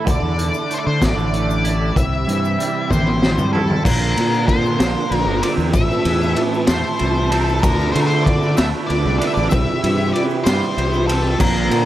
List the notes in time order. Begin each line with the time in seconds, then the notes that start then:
Already playing: E4 A4
0.05 D2 D3 D4, kick, closed hi-hat, shaker
0.10 D5
0.22 E2
0.38 D3, closed hi-hat
0.54 shaker
0.70 A3, closed hi-hat, shaker
0.74 C5
0.78 D5
0.87 D3 C5
1.01 A1 D3 D5, kick, snare, closed hi-hat, shaker
1.17 A1, shaker
1.33 A3, closed hi-hat
1.51 shaker
1.64 E4, closed hi-hat
1.95 C2 C3 C4 E4 G4 E5, kick, closed hi-hat, shaker
2.27 G2 E3, closed hi-hat
2.45 shaker
2.58 G3, closed hi-hat
2.90 A1 E3 C5, kick, high tom, shaker
3.07 high tom
3.22 G3, snare, shaker
3.38 C2, mid tom, shaker
3.53 E4 A4, floor tom
3.70 floor tom
3.84 A#1 A#2 C4 D4 A#4, kick, crash, shaker
4.03 shaker
4.16 A#2 D3, ride
4.34 shaker
4.47 D3 C5, kick, ride
4.65 shaker
4.79 A#1 A#3, snare, ride, shaker
5.10 A#1 D3, ride
5.16 A#4
5.26 G1
5.42 C4 D5, ride
5.58 E2, shaker
5.73 A1 A2 E4 E5 A5, kick, ride, shaker
5.92 shaker
6.05 E2 E3, ride
6.23 shaker
6.36 E3, ride
6.54 shaker
6.67 E2 A3 C5, snare, ride, shaker
6.99 C2 E3, ride
7.32 C4 A4, ride
7.41 A4 A#4
7.49 shaker
7.62 D2 D3 D4 A#4, kick, ride, shaker
7.80 shaker
7.92 D3 A3 C5, ride
8.02 A#4
8.07 C5
8.11 shaker
8.24 D3 D5, kick, ride
8.42 shaker
8.57 D2 A3 E5, snare, ride, shaker
8.87 D2 D3 D5, ride
9.05 C2
9.19 D4 D5, ride
9.27 E5
9.34 A1 D5, shaker
9.49 C2 C3 C4 G4 E5, kick, ride, shaker
9.83 G2 E3, ride
10.13 E3 D5, ride
10.30 shaker
10.44 G2 G3 C5, snare, ride, shaker
10.62 shaker
10.77 C2 E3, ride
10.93 shaker
11.07 C4 A4, ride, shaker
11.39 A#1 A#2 D4 A#4, kick, crash, shaker
11.56 shaker
11.70 A#2 D3, ride